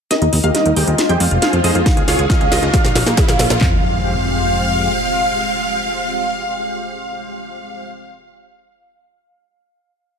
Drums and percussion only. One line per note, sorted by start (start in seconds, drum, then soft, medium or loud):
0.11 snare soft
0.11 closed hi-hat medium
0.22 closed hi-hat soft
0.33 open hi-hat loud
0.44 closed hi-hat medium
0.55 snare medium
0.55 closed hi-hat medium
0.66 closed hi-hat medium
0.76 open hi-hat medium
0.87 closed hi-hat medium
0.98 snare medium
0.98 closed hi-hat loud
1.09 closed hi-hat medium
1.20 open hi-hat loud
1.31 closed hi-hat medium
1.42 snare medium
1.42 closed hi-hat medium
1.53 closed hi-hat medium
1.64 open hi-hat medium
1.75 closed hi-hat medium
1.86 kick loud
1.86 snare medium
1.86 closed hi-hat medium
1.97 closed hi-hat medium
2.08 snare medium
2.08 open hi-hat loud
2.19 closed hi-hat medium
2.30 kick loud
2.30 snare medium
2.30 closed hi-hat loud
2.41 closed hi-hat soft
2.52 snare medium
2.52 open hi-hat medium
2.63 closed hi-hat medium
2.74 kick loud
2.74 snare medium
2.74 closed hi-hat medium
2.85 snare medium
2.85 closed hi-hat medium
2.95 snare loud
2.95 open hi-hat loud
3.06 snare medium
3.06 closed hi-hat medium
3.17 kick loud
3.17 snare loud
3.17 closed hi-hat loud
3.28 snare medium
3.28 closed hi-hat medium
3.39 snare loud
3.39 open hi-hat loud
3.50 snare medium
3.50 closed hi-hat medium
3.61 kick loud
3.61 clap medium
3.61 floor tom loud